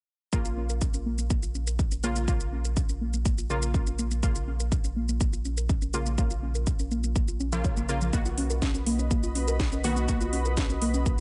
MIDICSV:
0, 0, Header, 1, 6, 480
1, 0, Start_track
1, 0, Tempo, 487805
1, 323, Time_signature, 4, 2, 24, 8
1, 11022, End_track
2, 0, Start_track
2, 0, Title_t, "Analog synth pad"
2, 0, Program_c, 0, 89
2, 8002, Note_on_c, 0, 83, 87
2, 8003, Note_on_c, 0, 66, 81
2, 8003, Note_on_c, 0, 71, 72
2, 8003, Note_on_c, 0, 75, 73
2, 11022, Note_off_c, 0, 66, 0
2, 11022, Note_off_c, 0, 71, 0
2, 11022, Note_off_c, 0, 75, 0
2, 11022, Note_off_c, 0, 83, 0
2, 11022, End_track
3, 0, Start_track
3, 0, Title_t, "Synth arpeggio sound"
3, 0, Program_c, 1, 84
3, 322, Note_on_c, 1, 58, 99
3, 428, Note_off_c, 1, 58, 0
3, 443, Note_on_c, 1, 65, 76
3, 513, Note_off_c, 1, 65, 0
3, 563, Note_on_c, 1, 61, 73
3, 605, Note_off_c, 1, 61, 0
3, 684, Note_on_c, 1, 70, 74
3, 725, Note_off_c, 1, 70, 0
3, 802, Note_on_c, 1, 61, 81
3, 845, Note_off_c, 1, 61, 0
3, 923, Note_on_c, 1, 61, 74
3, 965, Note_off_c, 1, 61, 0
3, 1042, Note_on_c, 1, 58, 99
3, 1149, Note_off_c, 1, 58, 0
3, 1163, Note_on_c, 1, 58, 77
3, 1205, Note_off_c, 1, 58, 0
3, 1282, Note_on_c, 1, 58, 81
3, 1325, Note_off_c, 1, 58, 0
3, 1403, Note_on_c, 1, 65, 76
3, 1473, Note_off_c, 1, 65, 0
3, 1522, Note_on_c, 1, 61, 72
3, 1565, Note_off_c, 1, 61, 0
3, 1644, Note_on_c, 1, 70, 74
3, 1713, Note_off_c, 1, 70, 0
3, 1763, Note_on_c, 1, 61, 80
3, 1805, Note_off_c, 1, 61, 0
3, 1885, Note_on_c, 1, 61, 73
3, 1926, Note_off_c, 1, 61, 0
3, 2003, Note_on_c, 1, 58, 101
3, 2074, Note_off_c, 1, 58, 0
3, 2124, Note_on_c, 1, 58, 73
3, 2166, Note_off_c, 1, 58, 0
3, 2243, Note_on_c, 1, 58, 103
3, 2349, Note_off_c, 1, 58, 0
3, 2364, Note_on_c, 1, 65, 75
3, 2433, Note_off_c, 1, 65, 0
3, 2482, Note_on_c, 1, 61, 74
3, 2525, Note_off_c, 1, 61, 0
3, 2604, Note_on_c, 1, 70, 75
3, 2646, Note_off_c, 1, 70, 0
3, 2723, Note_on_c, 1, 61, 81
3, 2765, Note_off_c, 1, 61, 0
3, 2844, Note_on_c, 1, 61, 76
3, 2886, Note_off_c, 1, 61, 0
3, 2963, Note_on_c, 1, 58, 96
3, 3069, Note_off_c, 1, 58, 0
3, 3085, Note_on_c, 1, 58, 76
3, 3126, Note_off_c, 1, 58, 0
3, 3204, Note_on_c, 1, 58, 81
3, 3246, Note_off_c, 1, 58, 0
3, 3325, Note_on_c, 1, 65, 76
3, 3394, Note_off_c, 1, 65, 0
3, 3444, Note_on_c, 1, 61, 73
3, 3486, Note_off_c, 1, 61, 0
3, 3566, Note_on_c, 1, 70, 73
3, 3634, Note_off_c, 1, 70, 0
3, 3684, Note_on_c, 1, 61, 81
3, 3726, Note_off_c, 1, 61, 0
3, 3805, Note_on_c, 1, 61, 72
3, 3846, Note_off_c, 1, 61, 0
3, 3923, Note_on_c, 1, 58, 102
3, 3994, Note_off_c, 1, 58, 0
3, 4045, Note_on_c, 1, 58, 75
3, 4086, Note_off_c, 1, 58, 0
3, 4163, Note_on_c, 1, 58, 102
3, 4269, Note_off_c, 1, 58, 0
3, 4285, Note_on_c, 1, 65, 77
3, 4354, Note_off_c, 1, 65, 0
3, 4403, Note_on_c, 1, 61, 74
3, 4445, Note_off_c, 1, 61, 0
3, 4524, Note_on_c, 1, 70, 73
3, 4565, Note_off_c, 1, 70, 0
3, 4643, Note_on_c, 1, 61, 80
3, 4686, Note_off_c, 1, 61, 0
3, 4765, Note_on_c, 1, 61, 77
3, 4806, Note_off_c, 1, 61, 0
3, 4883, Note_on_c, 1, 58, 99
3, 4989, Note_off_c, 1, 58, 0
3, 5004, Note_on_c, 1, 58, 78
3, 5046, Note_off_c, 1, 58, 0
3, 5123, Note_on_c, 1, 58, 80
3, 5165, Note_off_c, 1, 58, 0
3, 5244, Note_on_c, 1, 65, 76
3, 5313, Note_off_c, 1, 65, 0
3, 5363, Note_on_c, 1, 61, 73
3, 5405, Note_off_c, 1, 61, 0
3, 5484, Note_on_c, 1, 70, 77
3, 5553, Note_off_c, 1, 70, 0
3, 5602, Note_on_c, 1, 61, 84
3, 5645, Note_off_c, 1, 61, 0
3, 5724, Note_on_c, 1, 61, 72
3, 5766, Note_off_c, 1, 61, 0
3, 5842, Note_on_c, 1, 58, 100
3, 5913, Note_off_c, 1, 58, 0
3, 5964, Note_on_c, 1, 58, 73
3, 6005, Note_off_c, 1, 58, 0
3, 6083, Note_on_c, 1, 58, 102
3, 6189, Note_off_c, 1, 58, 0
3, 6204, Note_on_c, 1, 65, 77
3, 6273, Note_off_c, 1, 65, 0
3, 6322, Note_on_c, 1, 61, 75
3, 6365, Note_off_c, 1, 61, 0
3, 6443, Note_on_c, 1, 70, 75
3, 6485, Note_off_c, 1, 70, 0
3, 6562, Note_on_c, 1, 61, 78
3, 6605, Note_off_c, 1, 61, 0
3, 6684, Note_on_c, 1, 61, 78
3, 6725, Note_off_c, 1, 61, 0
3, 6802, Note_on_c, 1, 58, 100
3, 6909, Note_off_c, 1, 58, 0
3, 6923, Note_on_c, 1, 58, 80
3, 6965, Note_off_c, 1, 58, 0
3, 7042, Note_on_c, 1, 58, 80
3, 7085, Note_off_c, 1, 58, 0
3, 7163, Note_on_c, 1, 65, 78
3, 7233, Note_off_c, 1, 65, 0
3, 7282, Note_on_c, 1, 61, 101
3, 7325, Note_off_c, 1, 61, 0
3, 7403, Note_on_c, 1, 53, 98
3, 7473, Note_off_c, 1, 53, 0
3, 7522, Note_on_c, 1, 73, 82
3, 7593, Note_off_c, 1, 73, 0
3, 7643, Note_on_c, 1, 58, 73
3, 7685, Note_off_c, 1, 58, 0
3, 7761, Note_on_c, 1, 70, 75
3, 7805, Note_off_c, 1, 70, 0
3, 7883, Note_on_c, 1, 53, 74
3, 7925, Note_off_c, 1, 53, 0
3, 8001, Note_on_c, 1, 58, 101
3, 8108, Note_off_c, 1, 58, 0
3, 8123, Note_on_c, 1, 65, 77
3, 8193, Note_off_c, 1, 65, 0
3, 8242, Note_on_c, 1, 61, 78
3, 8285, Note_off_c, 1, 61, 0
3, 8363, Note_on_c, 1, 70, 75
3, 8405, Note_off_c, 1, 70, 0
3, 8482, Note_on_c, 1, 61, 82
3, 8525, Note_off_c, 1, 61, 0
3, 8603, Note_on_c, 1, 61, 75
3, 8645, Note_off_c, 1, 61, 0
3, 8722, Note_on_c, 1, 58, 102
3, 8829, Note_off_c, 1, 58, 0
3, 8843, Note_on_c, 1, 61, 76
3, 8948, Note_off_c, 1, 61, 0
3, 8962, Note_on_c, 1, 58, 81
3, 9005, Note_off_c, 1, 58, 0
3, 9083, Note_on_c, 1, 65, 77
3, 9153, Note_off_c, 1, 65, 0
3, 9202, Note_on_c, 1, 61, 74
3, 9245, Note_off_c, 1, 61, 0
3, 9324, Note_on_c, 1, 70, 74
3, 9393, Note_off_c, 1, 70, 0
3, 9442, Note_on_c, 1, 61, 80
3, 9485, Note_off_c, 1, 61, 0
3, 9564, Note_on_c, 1, 61, 75
3, 9605, Note_off_c, 1, 61, 0
3, 9682, Note_on_c, 1, 58, 101
3, 9753, Note_off_c, 1, 58, 0
3, 9804, Note_on_c, 1, 58, 77
3, 9846, Note_off_c, 1, 58, 0
3, 9922, Note_on_c, 1, 58, 100
3, 10029, Note_off_c, 1, 58, 0
3, 10044, Note_on_c, 1, 65, 77
3, 10113, Note_off_c, 1, 65, 0
3, 10163, Note_on_c, 1, 61, 77
3, 10205, Note_off_c, 1, 61, 0
3, 10285, Note_on_c, 1, 70, 77
3, 10326, Note_off_c, 1, 70, 0
3, 10404, Note_on_c, 1, 61, 79
3, 10446, Note_off_c, 1, 61, 0
3, 10525, Note_on_c, 1, 61, 78
3, 10566, Note_off_c, 1, 61, 0
3, 10645, Note_on_c, 1, 58, 103
3, 10750, Note_off_c, 1, 58, 0
3, 10766, Note_on_c, 1, 61, 76
3, 10869, Note_off_c, 1, 61, 0
3, 10884, Note_on_c, 1, 58, 82
3, 10926, Note_off_c, 1, 58, 0
3, 11022, End_track
4, 0, Start_track
4, 0, Title_t, "Synth stab"
4, 0, Program_c, 2, 62
4, 322, Note_on_c, 2, 49, 75
4, 322, Note_on_c, 2, 58, 70
4, 322, Note_on_c, 2, 65, 81
4, 1974, Note_off_c, 2, 49, 0
4, 1974, Note_off_c, 2, 58, 0
4, 1974, Note_off_c, 2, 65, 0
4, 2003, Note_on_c, 2, 49, 85
4, 2003, Note_on_c, 2, 58, 78
4, 2003, Note_on_c, 2, 65, 96
4, 2214, Note_off_c, 2, 49, 0
4, 2214, Note_off_c, 2, 58, 0
4, 2214, Note_off_c, 2, 65, 0
4, 2242, Note_on_c, 2, 58, 67
4, 2242, Note_on_c, 2, 65, 81
4, 2243, Note_on_c, 2, 49, 73
4, 3414, Note_off_c, 2, 49, 0
4, 3414, Note_off_c, 2, 58, 0
4, 3414, Note_off_c, 2, 65, 0
4, 3442, Note_on_c, 2, 49, 87
4, 3442, Note_on_c, 2, 58, 79
4, 3442, Note_on_c, 2, 65, 92
4, 4134, Note_off_c, 2, 49, 0
4, 4134, Note_off_c, 2, 58, 0
4, 4134, Note_off_c, 2, 65, 0
4, 4161, Note_on_c, 2, 49, 74
4, 4161, Note_on_c, 2, 58, 69
4, 4161, Note_on_c, 2, 65, 83
4, 5813, Note_off_c, 2, 49, 0
4, 5813, Note_off_c, 2, 58, 0
4, 5814, Note_off_c, 2, 65, 0
4, 5842, Note_on_c, 2, 49, 86
4, 5842, Note_on_c, 2, 58, 78
4, 5842, Note_on_c, 2, 65, 95
4, 6054, Note_off_c, 2, 49, 0
4, 6054, Note_off_c, 2, 58, 0
4, 6054, Note_off_c, 2, 65, 0
4, 6081, Note_on_c, 2, 49, 75
4, 6082, Note_on_c, 2, 58, 68
4, 6082, Note_on_c, 2, 65, 83
4, 7254, Note_off_c, 2, 49, 0
4, 7254, Note_off_c, 2, 58, 0
4, 7254, Note_off_c, 2, 65, 0
4, 7404, Note_on_c, 2, 49, 92
4, 7404, Note_on_c, 2, 58, 81
4, 7404, Note_on_c, 2, 65, 97
4, 7734, Note_off_c, 2, 49, 0
4, 7734, Note_off_c, 2, 58, 0
4, 7734, Note_off_c, 2, 65, 0
4, 7762, Note_on_c, 2, 49, 85
4, 7762, Note_on_c, 2, 58, 76
4, 7762, Note_on_c, 2, 65, 90
4, 7974, Note_off_c, 2, 49, 0
4, 7974, Note_off_c, 2, 58, 0
4, 7974, Note_off_c, 2, 65, 0
4, 8002, Note_on_c, 2, 51, 74
4, 8002, Note_on_c, 2, 59, 70
4, 8002, Note_on_c, 2, 66, 85
4, 9654, Note_off_c, 2, 51, 0
4, 9654, Note_off_c, 2, 59, 0
4, 9654, Note_off_c, 2, 66, 0
4, 9683, Note_on_c, 2, 59, 80
4, 9684, Note_on_c, 2, 51, 87
4, 9684, Note_on_c, 2, 66, 99
4, 9895, Note_off_c, 2, 51, 0
4, 9895, Note_off_c, 2, 59, 0
4, 9895, Note_off_c, 2, 66, 0
4, 9922, Note_on_c, 2, 66, 83
4, 9923, Note_on_c, 2, 51, 74
4, 9923, Note_on_c, 2, 59, 69
4, 11022, Note_off_c, 2, 51, 0
4, 11022, Note_off_c, 2, 59, 0
4, 11022, Note_off_c, 2, 66, 0
4, 11022, End_track
5, 0, Start_track
5, 0, Title_t, "Analog synth bass"
5, 0, Program_c, 3, 38
5, 322, Note_on_c, 3, 34, 87
5, 7979, Note_off_c, 3, 34, 0
5, 11022, End_track
6, 0, Start_track
6, 0, Title_t, "Drums"
6, 322, Note_on_c, 9, 36, 112
6, 322, Note_on_c, 9, 82, 65
6, 420, Note_off_c, 9, 36, 0
6, 420, Note_off_c, 9, 82, 0
6, 443, Note_on_c, 9, 82, 46
6, 542, Note_off_c, 9, 82, 0
6, 683, Note_on_c, 9, 82, 44
6, 782, Note_off_c, 9, 82, 0
6, 802, Note_on_c, 9, 36, 111
6, 802, Note_on_c, 9, 82, 64
6, 900, Note_off_c, 9, 82, 0
6, 901, Note_off_c, 9, 36, 0
6, 923, Note_on_c, 9, 82, 44
6, 1021, Note_off_c, 9, 82, 0
6, 1164, Note_on_c, 9, 82, 43
6, 1262, Note_off_c, 9, 82, 0
6, 1282, Note_on_c, 9, 36, 115
6, 1282, Note_on_c, 9, 82, 66
6, 1380, Note_off_c, 9, 82, 0
6, 1381, Note_off_c, 9, 36, 0
6, 1403, Note_on_c, 9, 82, 43
6, 1502, Note_off_c, 9, 82, 0
6, 1523, Note_on_c, 9, 82, 30
6, 1621, Note_off_c, 9, 82, 0
6, 1644, Note_on_c, 9, 82, 68
6, 1742, Note_off_c, 9, 82, 0
6, 1762, Note_on_c, 9, 36, 111
6, 1762, Note_on_c, 9, 82, 43
6, 1861, Note_off_c, 9, 36, 0
6, 1861, Note_off_c, 9, 82, 0
6, 1884, Note_on_c, 9, 82, 43
6, 1982, Note_off_c, 9, 82, 0
6, 2003, Note_on_c, 9, 82, 52
6, 2101, Note_off_c, 9, 82, 0
6, 2124, Note_on_c, 9, 82, 45
6, 2222, Note_off_c, 9, 82, 0
6, 2242, Note_on_c, 9, 36, 120
6, 2242, Note_on_c, 9, 82, 63
6, 2341, Note_off_c, 9, 36, 0
6, 2341, Note_off_c, 9, 82, 0
6, 2364, Note_on_c, 9, 82, 44
6, 2462, Note_off_c, 9, 82, 0
6, 2604, Note_on_c, 9, 82, 44
6, 2702, Note_off_c, 9, 82, 0
6, 2722, Note_on_c, 9, 36, 115
6, 2722, Note_on_c, 9, 82, 63
6, 2821, Note_off_c, 9, 36, 0
6, 2821, Note_off_c, 9, 82, 0
6, 2844, Note_on_c, 9, 82, 42
6, 2942, Note_off_c, 9, 82, 0
6, 3084, Note_on_c, 9, 82, 42
6, 3182, Note_off_c, 9, 82, 0
6, 3202, Note_on_c, 9, 36, 123
6, 3203, Note_on_c, 9, 82, 62
6, 3300, Note_off_c, 9, 36, 0
6, 3301, Note_off_c, 9, 82, 0
6, 3325, Note_on_c, 9, 82, 42
6, 3424, Note_off_c, 9, 82, 0
6, 3443, Note_on_c, 9, 82, 30
6, 3542, Note_off_c, 9, 82, 0
6, 3565, Note_on_c, 9, 82, 67
6, 3663, Note_off_c, 9, 82, 0
6, 3682, Note_on_c, 9, 36, 116
6, 3683, Note_on_c, 9, 82, 42
6, 3781, Note_off_c, 9, 36, 0
6, 3781, Note_off_c, 9, 82, 0
6, 3804, Note_on_c, 9, 82, 42
6, 3903, Note_off_c, 9, 82, 0
6, 3923, Note_on_c, 9, 82, 52
6, 4021, Note_off_c, 9, 82, 0
6, 4044, Note_on_c, 9, 82, 43
6, 4143, Note_off_c, 9, 82, 0
6, 4162, Note_on_c, 9, 36, 121
6, 4164, Note_on_c, 9, 82, 60
6, 4261, Note_off_c, 9, 36, 0
6, 4262, Note_off_c, 9, 82, 0
6, 4284, Note_on_c, 9, 82, 43
6, 4382, Note_off_c, 9, 82, 0
6, 4524, Note_on_c, 9, 82, 43
6, 4623, Note_off_c, 9, 82, 0
6, 4642, Note_on_c, 9, 36, 117
6, 4643, Note_on_c, 9, 82, 64
6, 4741, Note_off_c, 9, 36, 0
6, 4741, Note_off_c, 9, 82, 0
6, 4764, Note_on_c, 9, 82, 43
6, 4863, Note_off_c, 9, 82, 0
6, 5004, Note_on_c, 9, 82, 41
6, 5103, Note_off_c, 9, 82, 0
6, 5122, Note_on_c, 9, 36, 123
6, 5123, Note_on_c, 9, 82, 63
6, 5221, Note_off_c, 9, 36, 0
6, 5221, Note_off_c, 9, 82, 0
6, 5244, Note_on_c, 9, 82, 42
6, 5342, Note_off_c, 9, 82, 0
6, 5363, Note_on_c, 9, 82, 29
6, 5461, Note_off_c, 9, 82, 0
6, 5484, Note_on_c, 9, 82, 63
6, 5582, Note_off_c, 9, 82, 0
6, 5603, Note_on_c, 9, 36, 121
6, 5603, Note_on_c, 9, 82, 44
6, 5701, Note_off_c, 9, 36, 0
6, 5701, Note_off_c, 9, 82, 0
6, 5723, Note_on_c, 9, 82, 41
6, 5821, Note_off_c, 9, 82, 0
6, 5842, Note_on_c, 9, 82, 50
6, 5940, Note_off_c, 9, 82, 0
6, 5963, Note_on_c, 9, 82, 42
6, 6061, Note_off_c, 9, 82, 0
6, 6081, Note_on_c, 9, 82, 59
6, 6082, Note_on_c, 9, 36, 119
6, 6180, Note_off_c, 9, 82, 0
6, 6181, Note_off_c, 9, 36, 0
6, 6203, Note_on_c, 9, 82, 42
6, 6301, Note_off_c, 9, 82, 0
6, 6443, Note_on_c, 9, 82, 41
6, 6541, Note_off_c, 9, 82, 0
6, 6561, Note_on_c, 9, 82, 61
6, 6562, Note_on_c, 9, 36, 118
6, 6660, Note_off_c, 9, 36, 0
6, 6660, Note_off_c, 9, 82, 0
6, 6683, Note_on_c, 9, 82, 41
6, 6782, Note_off_c, 9, 82, 0
6, 6802, Note_on_c, 9, 82, 29
6, 6900, Note_off_c, 9, 82, 0
6, 6924, Note_on_c, 9, 82, 39
6, 7022, Note_off_c, 9, 82, 0
6, 7042, Note_on_c, 9, 36, 125
6, 7042, Note_on_c, 9, 82, 59
6, 7140, Note_off_c, 9, 36, 0
6, 7141, Note_off_c, 9, 82, 0
6, 7163, Note_on_c, 9, 82, 41
6, 7261, Note_off_c, 9, 82, 0
6, 7283, Note_on_c, 9, 82, 28
6, 7381, Note_off_c, 9, 82, 0
6, 7404, Note_on_c, 9, 82, 61
6, 7502, Note_off_c, 9, 82, 0
6, 7522, Note_on_c, 9, 36, 115
6, 7522, Note_on_c, 9, 82, 43
6, 7620, Note_off_c, 9, 36, 0
6, 7621, Note_off_c, 9, 82, 0
6, 7644, Note_on_c, 9, 82, 41
6, 7743, Note_off_c, 9, 82, 0
6, 7762, Note_on_c, 9, 82, 49
6, 7860, Note_off_c, 9, 82, 0
6, 7883, Note_on_c, 9, 82, 42
6, 7982, Note_off_c, 9, 82, 0
6, 8001, Note_on_c, 9, 82, 63
6, 8002, Note_on_c, 9, 36, 113
6, 8100, Note_off_c, 9, 36, 0
6, 8100, Note_off_c, 9, 82, 0
6, 8122, Note_on_c, 9, 82, 42
6, 8221, Note_off_c, 9, 82, 0
6, 8242, Note_on_c, 9, 46, 102
6, 8340, Note_off_c, 9, 46, 0
6, 8364, Note_on_c, 9, 82, 43
6, 8462, Note_off_c, 9, 82, 0
6, 8482, Note_on_c, 9, 36, 113
6, 8482, Note_on_c, 9, 38, 108
6, 8482, Note_on_c, 9, 82, 60
6, 8580, Note_off_c, 9, 36, 0
6, 8581, Note_off_c, 9, 38, 0
6, 8581, Note_off_c, 9, 82, 0
6, 8604, Note_on_c, 9, 82, 42
6, 8703, Note_off_c, 9, 82, 0
6, 8723, Note_on_c, 9, 46, 106
6, 8821, Note_off_c, 9, 46, 0
6, 8845, Note_on_c, 9, 82, 40
6, 8943, Note_off_c, 9, 82, 0
6, 8962, Note_on_c, 9, 36, 118
6, 8963, Note_on_c, 9, 82, 63
6, 9061, Note_off_c, 9, 36, 0
6, 9061, Note_off_c, 9, 82, 0
6, 9084, Note_on_c, 9, 82, 41
6, 9183, Note_off_c, 9, 82, 0
6, 9204, Note_on_c, 9, 46, 102
6, 9204, Note_on_c, 9, 82, 29
6, 9302, Note_off_c, 9, 46, 0
6, 9302, Note_off_c, 9, 82, 0
6, 9325, Note_on_c, 9, 82, 63
6, 9424, Note_off_c, 9, 82, 0
6, 9442, Note_on_c, 9, 36, 111
6, 9443, Note_on_c, 9, 38, 111
6, 9443, Note_on_c, 9, 82, 42
6, 9541, Note_off_c, 9, 36, 0
6, 9542, Note_off_c, 9, 38, 0
6, 9542, Note_off_c, 9, 82, 0
6, 9565, Note_on_c, 9, 82, 42
6, 9663, Note_off_c, 9, 82, 0
6, 9684, Note_on_c, 9, 46, 102
6, 9684, Note_on_c, 9, 82, 50
6, 9782, Note_off_c, 9, 46, 0
6, 9782, Note_off_c, 9, 82, 0
6, 9805, Note_on_c, 9, 82, 42
6, 9903, Note_off_c, 9, 82, 0
6, 9923, Note_on_c, 9, 36, 110
6, 9923, Note_on_c, 9, 82, 63
6, 10021, Note_off_c, 9, 36, 0
6, 10022, Note_off_c, 9, 82, 0
6, 10044, Note_on_c, 9, 82, 44
6, 10143, Note_off_c, 9, 82, 0
6, 10163, Note_on_c, 9, 46, 98
6, 10261, Note_off_c, 9, 46, 0
6, 10284, Note_on_c, 9, 82, 44
6, 10382, Note_off_c, 9, 82, 0
6, 10402, Note_on_c, 9, 38, 109
6, 10402, Note_on_c, 9, 82, 64
6, 10403, Note_on_c, 9, 36, 110
6, 10501, Note_off_c, 9, 36, 0
6, 10501, Note_off_c, 9, 38, 0
6, 10501, Note_off_c, 9, 82, 0
6, 10523, Note_on_c, 9, 82, 42
6, 10622, Note_off_c, 9, 82, 0
6, 10642, Note_on_c, 9, 46, 103
6, 10741, Note_off_c, 9, 46, 0
6, 10764, Note_on_c, 9, 82, 41
6, 10862, Note_off_c, 9, 82, 0
6, 10882, Note_on_c, 9, 82, 63
6, 10883, Note_on_c, 9, 36, 116
6, 10981, Note_off_c, 9, 36, 0
6, 10981, Note_off_c, 9, 82, 0
6, 11022, End_track
0, 0, End_of_file